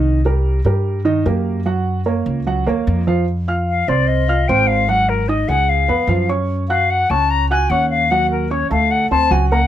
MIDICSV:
0, 0, Header, 1, 4, 480
1, 0, Start_track
1, 0, Tempo, 402145
1, 70, Time_signature, 4, 2, 24, 8
1, 11543, End_track
2, 0, Start_track
2, 0, Title_t, "Flute"
2, 0, Program_c, 0, 73
2, 4396, Note_on_c, 0, 77, 76
2, 4636, Note_on_c, 0, 74, 80
2, 4654, Note_off_c, 0, 77, 0
2, 4865, Note_on_c, 0, 75, 76
2, 4883, Note_off_c, 0, 74, 0
2, 5347, Note_on_c, 0, 79, 81
2, 5365, Note_off_c, 0, 75, 0
2, 5579, Note_on_c, 0, 77, 88
2, 5596, Note_off_c, 0, 79, 0
2, 5836, Note_on_c, 0, 78, 92
2, 5854, Note_off_c, 0, 77, 0
2, 6076, Note_on_c, 0, 70, 74
2, 6094, Note_off_c, 0, 78, 0
2, 6309, Note_on_c, 0, 75, 76
2, 6327, Note_off_c, 0, 70, 0
2, 6544, Note_on_c, 0, 78, 93
2, 6562, Note_off_c, 0, 75, 0
2, 6794, Note_on_c, 0, 77, 81
2, 6812, Note_off_c, 0, 78, 0
2, 7512, Note_off_c, 0, 77, 0
2, 7989, Note_on_c, 0, 77, 88
2, 8242, Note_on_c, 0, 78, 86
2, 8260, Note_off_c, 0, 77, 0
2, 8476, Note_on_c, 0, 81, 99
2, 8494, Note_off_c, 0, 78, 0
2, 8719, Note_on_c, 0, 82, 98
2, 8737, Note_off_c, 0, 81, 0
2, 8949, Note_off_c, 0, 82, 0
2, 8957, Note_on_c, 0, 80, 88
2, 9191, Note_on_c, 0, 78, 80
2, 9209, Note_off_c, 0, 80, 0
2, 9422, Note_off_c, 0, 78, 0
2, 9429, Note_on_c, 0, 77, 92
2, 9677, Note_on_c, 0, 78, 92
2, 9695, Note_off_c, 0, 77, 0
2, 9915, Note_off_c, 0, 78, 0
2, 9920, Note_on_c, 0, 70, 50
2, 10156, Note_on_c, 0, 73, 70
2, 10174, Note_off_c, 0, 70, 0
2, 10394, Note_off_c, 0, 73, 0
2, 10400, Note_on_c, 0, 77, 85
2, 10637, Note_on_c, 0, 78, 81
2, 10655, Note_off_c, 0, 77, 0
2, 10860, Note_off_c, 0, 78, 0
2, 10867, Note_on_c, 0, 81, 108
2, 11121, Note_on_c, 0, 80, 85
2, 11139, Note_off_c, 0, 81, 0
2, 11332, Note_off_c, 0, 80, 0
2, 11339, Note_on_c, 0, 78, 91
2, 11543, Note_off_c, 0, 78, 0
2, 11543, End_track
3, 0, Start_track
3, 0, Title_t, "Upright piano"
3, 0, Program_c, 1, 0
3, 0, Note_on_c, 1, 51, 82
3, 0, Note_on_c, 1, 63, 86
3, 0, Note_on_c, 1, 75, 80
3, 223, Note_off_c, 1, 51, 0
3, 225, Note_off_c, 1, 63, 0
3, 228, Note_off_c, 1, 75, 0
3, 301, Note_on_c, 1, 55, 73
3, 306, Note_on_c, 1, 67, 69
3, 310, Note_on_c, 1, 70, 76
3, 698, Note_off_c, 1, 55, 0
3, 701, Note_off_c, 1, 67, 0
3, 703, Note_off_c, 1, 70, 0
3, 782, Note_on_c, 1, 55, 72
3, 790, Note_on_c, 1, 67, 72
3, 790, Note_on_c, 1, 70, 73
3, 1179, Note_off_c, 1, 55, 0
3, 1183, Note_off_c, 1, 67, 0
3, 1183, Note_off_c, 1, 70, 0
3, 1250, Note_on_c, 1, 51, 88
3, 1253, Note_on_c, 1, 63, 87
3, 1259, Note_on_c, 1, 75, 84
3, 1455, Note_off_c, 1, 51, 0
3, 1457, Note_off_c, 1, 63, 0
3, 1460, Note_off_c, 1, 75, 0
3, 1501, Note_on_c, 1, 58, 68
3, 1503, Note_on_c, 1, 67, 68
3, 1504, Note_on_c, 1, 70, 68
3, 1898, Note_off_c, 1, 58, 0
3, 1899, Note_off_c, 1, 67, 0
3, 1899, Note_off_c, 1, 70, 0
3, 1977, Note_on_c, 1, 54, 76
3, 1978, Note_on_c, 1, 66, 79
3, 1985, Note_on_c, 1, 78, 77
3, 2375, Note_off_c, 1, 54, 0
3, 2376, Note_off_c, 1, 66, 0
3, 2380, Note_off_c, 1, 78, 0
3, 2457, Note_on_c, 1, 58, 73
3, 2459, Note_on_c, 1, 70, 70
3, 2459, Note_on_c, 1, 73, 75
3, 2855, Note_off_c, 1, 58, 0
3, 2856, Note_off_c, 1, 70, 0
3, 2857, Note_off_c, 1, 73, 0
3, 2943, Note_on_c, 1, 54, 79
3, 2944, Note_on_c, 1, 66, 74
3, 2951, Note_on_c, 1, 78, 78
3, 3142, Note_off_c, 1, 54, 0
3, 3143, Note_off_c, 1, 66, 0
3, 3147, Note_off_c, 1, 78, 0
3, 3182, Note_on_c, 1, 58, 79
3, 3190, Note_on_c, 1, 70, 78
3, 3196, Note_on_c, 1, 73, 75
3, 3578, Note_off_c, 1, 58, 0
3, 3583, Note_off_c, 1, 70, 0
3, 3586, Note_off_c, 1, 73, 0
3, 3664, Note_on_c, 1, 53, 85
3, 3667, Note_on_c, 1, 65, 78
3, 3672, Note_on_c, 1, 77, 83
3, 3862, Note_off_c, 1, 53, 0
3, 3864, Note_off_c, 1, 65, 0
3, 3867, Note_off_c, 1, 77, 0
3, 4151, Note_on_c, 1, 65, 71
3, 4152, Note_on_c, 1, 77, 71
3, 4158, Note_on_c, 1, 89, 70
3, 4543, Note_off_c, 1, 65, 0
3, 4544, Note_off_c, 1, 77, 0
3, 4547, Note_off_c, 1, 89, 0
3, 4635, Note_on_c, 1, 60, 74
3, 4639, Note_on_c, 1, 72, 70
3, 4646, Note_on_c, 1, 84, 69
3, 5026, Note_off_c, 1, 60, 0
3, 5028, Note_off_c, 1, 72, 0
3, 5032, Note_off_c, 1, 84, 0
3, 5110, Note_on_c, 1, 65, 74
3, 5113, Note_on_c, 1, 77, 74
3, 5123, Note_on_c, 1, 89, 70
3, 5306, Note_off_c, 1, 65, 0
3, 5308, Note_off_c, 1, 77, 0
3, 5314, Note_off_c, 1, 89, 0
3, 5361, Note_on_c, 1, 60, 68
3, 5361, Note_on_c, 1, 72, 68
3, 5365, Note_on_c, 1, 84, 65
3, 5749, Note_off_c, 1, 60, 0
3, 5749, Note_off_c, 1, 72, 0
3, 5751, Note_off_c, 1, 84, 0
3, 5833, Note_on_c, 1, 54, 73
3, 5834, Note_on_c, 1, 66, 72
3, 5834, Note_on_c, 1, 78, 73
3, 6225, Note_off_c, 1, 54, 0
3, 6225, Note_off_c, 1, 66, 0
3, 6225, Note_off_c, 1, 78, 0
3, 6309, Note_on_c, 1, 63, 72
3, 6314, Note_on_c, 1, 75, 70
3, 6319, Note_on_c, 1, 87, 69
3, 6506, Note_off_c, 1, 63, 0
3, 6508, Note_off_c, 1, 75, 0
3, 6511, Note_off_c, 1, 87, 0
3, 6546, Note_on_c, 1, 56, 69
3, 6553, Note_on_c, 1, 68, 67
3, 6559, Note_on_c, 1, 80, 75
3, 6941, Note_off_c, 1, 56, 0
3, 6945, Note_off_c, 1, 68, 0
3, 6948, Note_off_c, 1, 80, 0
3, 7023, Note_on_c, 1, 59, 74
3, 7028, Note_on_c, 1, 71, 75
3, 7032, Note_on_c, 1, 83, 73
3, 7222, Note_off_c, 1, 59, 0
3, 7225, Note_off_c, 1, 71, 0
3, 7228, Note_off_c, 1, 83, 0
3, 7265, Note_on_c, 1, 65, 74
3, 7266, Note_on_c, 1, 53, 76
3, 7270, Note_on_c, 1, 77, 74
3, 7463, Note_off_c, 1, 65, 0
3, 7464, Note_off_c, 1, 53, 0
3, 7467, Note_off_c, 1, 77, 0
3, 7508, Note_on_c, 1, 61, 73
3, 7509, Note_on_c, 1, 73, 71
3, 7514, Note_on_c, 1, 85, 75
3, 7902, Note_off_c, 1, 61, 0
3, 7903, Note_off_c, 1, 73, 0
3, 7906, Note_off_c, 1, 85, 0
3, 7992, Note_on_c, 1, 66, 75
3, 7999, Note_on_c, 1, 90, 76
3, 8000, Note_on_c, 1, 78, 72
3, 8385, Note_off_c, 1, 66, 0
3, 8389, Note_off_c, 1, 78, 0
3, 8389, Note_off_c, 1, 90, 0
3, 8478, Note_on_c, 1, 61, 71
3, 8478, Note_on_c, 1, 73, 71
3, 8486, Note_on_c, 1, 85, 70
3, 8869, Note_off_c, 1, 61, 0
3, 8869, Note_off_c, 1, 73, 0
3, 8874, Note_off_c, 1, 85, 0
3, 8959, Note_on_c, 1, 66, 75
3, 8963, Note_on_c, 1, 78, 76
3, 8970, Note_on_c, 1, 90, 79
3, 9152, Note_off_c, 1, 66, 0
3, 9155, Note_off_c, 1, 78, 0
3, 9159, Note_off_c, 1, 90, 0
3, 9203, Note_on_c, 1, 61, 73
3, 9207, Note_on_c, 1, 73, 68
3, 9208, Note_on_c, 1, 85, 69
3, 9592, Note_off_c, 1, 61, 0
3, 9594, Note_off_c, 1, 73, 0
3, 9595, Note_off_c, 1, 85, 0
3, 9681, Note_on_c, 1, 54, 78
3, 9684, Note_on_c, 1, 66, 77
3, 9689, Note_on_c, 1, 78, 78
3, 10071, Note_off_c, 1, 54, 0
3, 10073, Note_off_c, 1, 66, 0
3, 10076, Note_off_c, 1, 78, 0
3, 10151, Note_on_c, 1, 61, 70
3, 10156, Note_on_c, 1, 73, 67
3, 10161, Note_on_c, 1, 85, 70
3, 10348, Note_off_c, 1, 61, 0
3, 10351, Note_off_c, 1, 73, 0
3, 10355, Note_off_c, 1, 85, 0
3, 10390, Note_on_c, 1, 57, 70
3, 10396, Note_on_c, 1, 69, 71
3, 10400, Note_on_c, 1, 81, 68
3, 10785, Note_off_c, 1, 57, 0
3, 10789, Note_off_c, 1, 69, 0
3, 10791, Note_off_c, 1, 81, 0
3, 10876, Note_on_c, 1, 60, 73
3, 10880, Note_on_c, 1, 72, 73
3, 10883, Note_on_c, 1, 84, 74
3, 11072, Note_off_c, 1, 60, 0
3, 11074, Note_off_c, 1, 72, 0
3, 11076, Note_off_c, 1, 84, 0
3, 11110, Note_on_c, 1, 54, 81
3, 11114, Note_on_c, 1, 66, 81
3, 11120, Note_on_c, 1, 78, 75
3, 11308, Note_off_c, 1, 54, 0
3, 11311, Note_off_c, 1, 66, 0
3, 11314, Note_off_c, 1, 78, 0
3, 11359, Note_on_c, 1, 58, 74
3, 11361, Note_on_c, 1, 70, 73
3, 11367, Note_on_c, 1, 82, 74
3, 11543, Note_off_c, 1, 58, 0
3, 11543, Note_off_c, 1, 70, 0
3, 11543, Note_off_c, 1, 82, 0
3, 11543, End_track
4, 0, Start_track
4, 0, Title_t, "Upright bass"
4, 0, Program_c, 2, 32
4, 0, Note_on_c, 2, 36, 94
4, 712, Note_off_c, 2, 36, 0
4, 770, Note_on_c, 2, 43, 89
4, 1452, Note_off_c, 2, 43, 0
4, 1500, Note_on_c, 2, 42, 93
4, 2632, Note_off_c, 2, 42, 0
4, 2696, Note_on_c, 2, 37, 90
4, 3148, Note_off_c, 2, 37, 0
4, 3180, Note_on_c, 2, 39, 67
4, 3407, Note_off_c, 2, 39, 0
4, 3427, Note_on_c, 2, 41, 98
4, 4555, Note_off_c, 2, 41, 0
4, 4631, Note_on_c, 2, 36, 86
4, 5302, Note_off_c, 2, 36, 0
4, 5360, Note_on_c, 2, 32, 93
4, 6482, Note_off_c, 2, 32, 0
4, 6548, Note_on_c, 2, 37, 87
4, 6994, Note_off_c, 2, 37, 0
4, 7028, Note_on_c, 2, 41, 69
4, 7242, Note_off_c, 2, 41, 0
4, 7250, Note_on_c, 2, 42, 94
4, 8388, Note_off_c, 2, 42, 0
4, 8473, Note_on_c, 2, 37, 89
4, 9144, Note_off_c, 2, 37, 0
4, 9187, Note_on_c, 2, 39, 93
4, 10319, Note_off_c, 2, 39, 0
4, 10392, Note_on_c, 2, 38, 89
4, 10839, Note_off_c, 2, 38, 0
4, 10872, Note_on_c, 2, 38, 64
4, 11096, Note_off_c, 2, 38, 0
4, 11109, Note_on_c, 2, 37, 96
4, 11543, Note_off_c, 2, 37, 0
4, 11543, End_track
0, 0, End_of_file